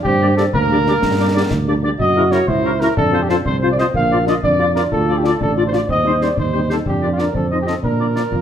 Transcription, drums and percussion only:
0.05 concert bass drum
0.38 snare
0.54 concert bass drum
0.86 snare
1.02 concert bass drum, snare
1.51 concert bass drum, snare
2.00 concert bass drum
2.32 snare
2.48 concert bass drum
2.81 snare
2.97 concert bass drum
3.29 snare
3.46 concert bass drum
3.78 snare
3.94 concert bass drum
4.27 snare
4.43 concert bass drum
4.76 snare
4.92 concert bass drum
5.25 snare
5.41 concert bass drum
5.73 snare
5.89 concert bass drum
6.22 snare
6.37 concert bass drum
6.70 snare
6.86 concert bass drum
7.19 snare
7.35 concert bass drum
7.67 snare
7.84 concert bass drum
8.16 snare
8.32 concert bass drum

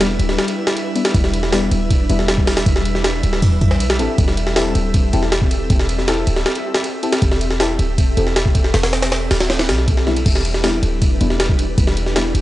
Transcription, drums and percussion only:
0.01 snare, ride
0.19 ride
0.29 snare
0.39 snare
0.48 ride
0.67 snare
0.77 ride
0.96 ride
1.05 snare, ride
1.14 kick, ride
1.24 snare
1.34 ride
1.43 snare
1.53 snare, open hi-hat
1.71 ride
1.90 kick, ride
2.10 ride
2.19 snare
2.28 snare, ride
2.38 kick
2.47 snare, open hi-hat
2.57 snare, open hi-hat
2.66 kick, ride
2.76 snare
2.85 ride
2.95 snare
3.04 snare, ride
3.23 ride
3.33 snare
3.42 kick, ride
3.61 kick, ride
3.71 snare
3.80 ride
3.90 snare
3.99 ride
4.18 kick, ride
4.28 snare
4.37 ride
4.47 snare
4.56 snare, open hi-hat
4.75 ride
4.94 kick, ride
5.13 ride
5.23 snare
5.32 snare, ride
5.42 kick
5.51 ride
5.70 kick, ride
5.79 snare
5.89 ride
5.99 snare
6.08 snare, ride
6.27 ride
6.36 snare
6.46 snare
6.55 ride
6.75 snare
6.84 ride
7.03 ride
7.13 snare, ride
7.22 kick, ride
7.32 snare
7.41 ride
7.51 snare
7.60 snare, open hi-hat
7.79 ride
7.98 kick, ride
8.17 ride
8.27 snare
8.36 snare, ride
8.46 kick
8.55 kick, ride
8.64 snare
8.74 snare, open hi-hat
8.83 snare, open hi-hat
8.93 snare, open hi-hat
9.02 snare, open hi-hat
9.12 snare, ride
9.31 snare, open hi-hat
9.40 snare, open hi-hat
9.50 snare, open hi-hat
9.59 snare, open hi-hat
9.69 snare, open hi-hat
9.78 snare
9.88 kick, ride
9.97 snare
10.07 snare
10.16 ride
10.26 kick, crash, ride
10.35 snare
10.45 ride
10.54 snare
10.64 snare, open hi-hat
10.83 ride
11.02 kick, ride
11.21 ride
11.30 snare
11.40 snare, ride
11.49 kick
11.59 ride
11.78 kick, ride
11.87 snare
11.97 ride
12.06 snare
12.16 snare, ride
12.35 ride

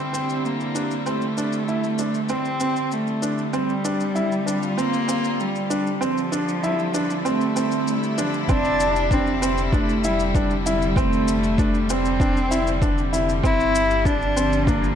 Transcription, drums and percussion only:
0.14 shaker
0.30 shaker
0.45 shaker
0.60 shaker
0.75 shaker
0.91 shaker
1.06 shaker
1.22 shaker
1.38 shaker
1.53 shaker
1.68 shaker
1.84 shaker
1.98 shaker
2.14 shaker
2.29 shaker
2.45 shaker
2.60 shaker
2.76 shaker
2.92 shaker
3.07 shaker
3.23 shaker
3.38 shaker
3.53 shaker
3.69 shaker
3.85 shaker
4.00 shaker
4.16 shaker
4.32 shaker
4.48 shaker
4.63 shaker
4.78 shaker
4.94 shaker
5.09 shaker
5.24 shaker
5.40 shaker
5.55 shaker
5.71 shaker
5.87 shaker
6.02 shaker
6.18 shaker
6.33 shaker
6.48 shaker
6.64 shaker
6.79 shaker
6.94 shaker
7.10 shaker
7.26 shaker
7.41 shaker
7.56 shaker
7.72 shaker
7.88 shaker
8.03 shaker
8.18 shaker
8.34 shaker
8.49 kick, shaker
8.65 shaker
8.80 shaker
8.96 shaker
9.11 kick, shaker
9.27 shaker
9.43 shaker
9.58 shaker
9.73 kick, shaker
9.89 shaker
10.04 shaker
10.20 shaker
10.35 kick, shaker
10.51 shaker
10.66 shaker
10.82 shaker
10.96 kick, shaker
11.13 shaker
11.28 shaker
11.44 shaker
11.58 kick, shaker
11.74 shaker
11.90 shaker
12.05 shaker
12.20 kick, shaker
12.37 shaker
12.52 shaker
12.67 shaker
12.82 kick, shaker
12.98 shaker
13.14 shaker
13.29 shaker
13.44 kick, shaker
13.60 shaker
13.75 shaker
13.91 shaker
14.05 kick, shaker
14.22 shaker
14.37 shaker
14.53 shaker
14.67 kick, shaker
14.84 shaker

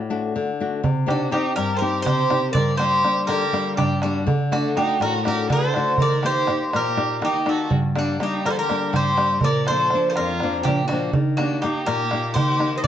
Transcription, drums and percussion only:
0.84 darbuka dum
0.97 darbuka tek
1.08 darbuka tek
1.34 darbuka tek
1.46 darbuka tek
1.57 darbuka tek
2.06 darbuka tek, darbuka dum
2.19 darbuka tek
2.30 darbuka tek
2.55 darbuka dum
2.68 darbuka tek
2.79 darbuka tek
3.04 darbuka tek
3.16 darbuka tek
3.29 darbuka tek
3.54 darbuka tek
3.78 darbuka tek, darbuka dum
3.91 darbuka tek
4.02 darbuka tek
4.28 darbuka dum
4.40 darbuka tek
4.52 darbuka tek
4.77 darbuka tek
4.88 darbuka tek
5.01 darbuka tek
5.25 darbuka tek
5.50 darbuka tek, darbuka dum
5.74 darbuka tek
5.98 darbuka dum
6.12 darbuka tek
6.23 darbuka tek
6.47 darbuka tek
6.61 darbuka tek
6.73 darbuka tek
6.86 darbuka tek
6.98 darbuka tek
7.22 darbuka tek
7.34 darbuka tek
7.46 darbuka tek
7.71 darbuka dum
7.83 darbuka tek
7.96 darbuka tek
8.20 darbuka tek
8.34 darbuka tek
8.46 darbuka tek
8.69 darbuka tek
8.94 darbuka tek, darbuka dum
9.17 darbuka tek
9.41 darbuka dum
9.55 darbuka tek
9.67 darbuka tek
9.90 darbuka tek
10.02 darbuka tek
10.16 darbuka tek
10.40 darbuka tek
10.65 darbuka tek, darbuka dum
10.77 darbuka tek
10.89 darbuka tek
11.13 darbuka dum
11.38 darbuka tek
11.62 darbuka tek
11.75 darbuka tek
11.87 darbuka tek
12.11 darbuka tek
12.36 darbuka tek, darbuka dum
12.48 darbuka tek
12.60 darbuka tek

